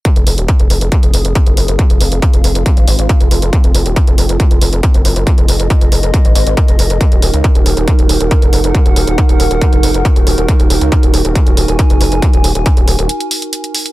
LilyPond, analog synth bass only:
\new Staff \with { instrumentName = "Analog synth bass" } { \clef bass \time 4/4 \key f \phrygian \tempo 4 = 138 r16 f,,16 f,,16 ees,,16 r16 f,,16 f,,16 f,,16 r16 f,,16 f,,16 f,,16 r16 ges,,16 ges,,16 ges,,16 | r16 f,,16 f,,16 f,,16 r16 f,,16 f,,16 f,,16 r16 aes,,16 aes,,16 aes,,16 r16 f,,16 f,,16 f,,16 | r16 f,,16 f,,16 ees,,16 r16 f,,16 f,,16 f,,16 r16 f,,16 f,,16 f,,16 r16 ges,,16 ges,,16 ges,,16 | r16 f,,16 f,,16 f,,16 r16 f,,16 f,,16 f,,16 r16 aes,,16 aes,,16 aes,,16 r16 f,,16 f,,16 f,,16 |
r16 ees,,16 ees,,16 des,16 r16 ees,,16 ees,,16 ees,,16 r16 ees,,16 ees,,16 ees,,16 r16 f,,16 f,,16 f,,16 | r16 ees,,16 ees,,16 ees,,16 r16 ees,,16 ees,,16 ees,,16 r16 f,,16 f,,16 f,,16 r16 ees,,16 ees,,16 ees,,16 | r16 ees,,16 ees,,16 des,16 r16 ees,,16 ees,,16 ees,,16 r16 ees,,16 ees,,16 ees,,16 r16 f,,16 f,,16 f,,16 | r16 ees,,16 ees,,16 ees,,16 r16 ees,,16 ees,,16 ees,,16 r2 | }